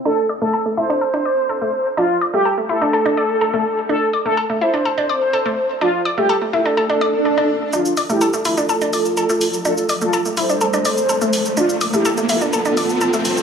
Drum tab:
HH |----------------|----------------|----------------|----------------|
SH |----------------|----------------|----------------|----------------|

HH |--o---o---o---o-|--o---o---o---o-|--o---o---o---o-|
SH |xxxxxxxxxxxxxxxx|xxxxxxxxxxxxxxxx|xxxxxxxxxxxxxxxx|